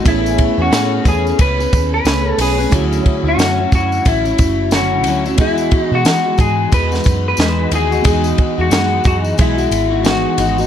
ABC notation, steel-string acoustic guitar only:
X:1
M:4/4
L:1/16
Q:"Swing 16ths" 1/4=90
K:E
V:1 name="Steel-string acoustic guitar"
[A,CGB]3 [CGB] [A,CGB]2 [A,CGB]2 [A,CGB] [CGB]3 [A,CGB]2 [A,CGB] [CGB] | [=D,F,CE]3 [F,CE] [D,F,CE] [F,CE] [D,F,CE]2 [D,F,CE] [F,CE]3 [D,F,CE]2 [D,F,CE] [F,CE] | [E,G,F]3 [G,DF] [E,G,DF] [G,DF] [E,G,DF]2 [E,G,DF] [G,DF]3 [E,G,DF]2 [E,G,DF] [G,DF] | [E,G,DF]3 [G,DF] [E,G,DF]2 [E,G,DF]2 [E,G,DF] [G,F]2 [G,DF] [E,G,DF]2 [E,G,DF] [G,DF] |]